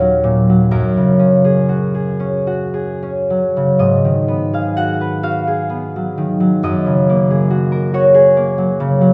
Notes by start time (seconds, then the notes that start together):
Already playing: D#2 A#2 C#4 F#4 A#4 C#5 D#5 F5 F#5
0.00 F#3
0.24 A#2
0.49 F#3
0.71 F#2 A#4
0.97 C#3
1.19 C#4
1.45 G#4
1.69 F#4
1.95 G#4
2.20 C#4
2.47 F#4
2.74 G#4
3.03 C#4
3.30 F#3
3.57 C#3
3.79 G#2 D#5
4.05 D#3
4.28 B3
4.53 G#4 F5
4.77 F#4 F#5
5.01 B4
5.23 F#4 F5
5.47 G#4
5.70 B3
5.96 F#3
6.18 D#3
6.40 F#3
6.63 F#2 D#5
6.86 C#3
7.09 A#3
7.30 G#4
7.50 F#4
7.72 A#4
7.94 F#4 C#5
8.14 G#4
8.37 A#3
8.58 F#3
8.80 C#3
9.01 F#3